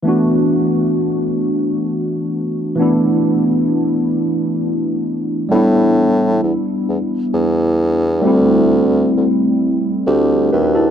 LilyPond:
<<
  \new Staff \with { instrumentName = "Tine electric piano" } { \time 6/8 \key e \minor \tempo 4. = 44 r2. | r2. | r2. | r2 <d' g'>8 <fis' b'>16 <e' a'>16 | }
  \new Staff \with { instrumentName = "Tine electric piano" } { \time 6/8 \key e \minor <e a b d' fis'>2. | <e a b d' e'>2. | <g b d' e'>2. | <g a c' e'>2. | }
  \new Staff \with { instrumentName = "Bassoon" } { \clef bass \time 6/8 \key e \minor r2. | r2. | a,4 e,8 e,8 e,4 | d,4 d,8 r8 d,8 dis,8 | }
>>